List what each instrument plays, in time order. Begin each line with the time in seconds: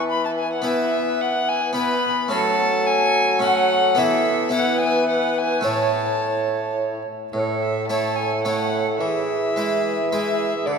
Already playing: bassoon E3, harpsichord E3 B3 E4 B4, recorder B4
0.10 violin B5
0.25 violin A5
0.39 violin G#5
0.53 violin F#5
0.62 harpsichord B3 E4 B4
0.66 recorder B4, violin E5
1.21 violin F#5
1.48 violin G#5
1.73 harpsichord B3 E4 B4, violin B5
1.77 recorder B4
2.28 bassoon F#3, harpsichord F#3 A3 C#4 F#4, violin A5
2.33 recorder A4
2.87 violin G#5
3.39 harpsichord A3 C#4 F#4
3.43 recorder A4, violin F#5
3.95 bassoon E3, harpsichord B3 E4 A4, violin E5
3.99 harpsichord E3, recorder B4
4.04 recorder A4
4.49 harpsichord B3 E4 B4
4.54 recorder B4, violin F#5
4.81 violin G#5
5.09 violin F#5
5.38 violin G#5
5.61 bassoon A2, harpsichord A2 A3 E4 C#5
5.65 recorder C#5, violin A5
7.33 bassoon A2, harpsichord A2, recorder B4, violin C#5
7.39 recorder A4
7.63 violin E5
7.88 harpsichord A3 E4 C#5, recorder A4, violin A5
8.16 violin G#5
8.44 harpsichord A3 E4 C#5, violin F#5
9.00 bassoon E3, harpsichord E3, recorder A4, violin E5
9.05 recorder G#4
9.56 harpsichord G#3 E4 B4
10.11 harpsichord G#3 E4 B4, recorder G#4, violin E5
10.66 bassoon D3, harpsichord D3, recorder B4, violin D5
10.72 recorder A4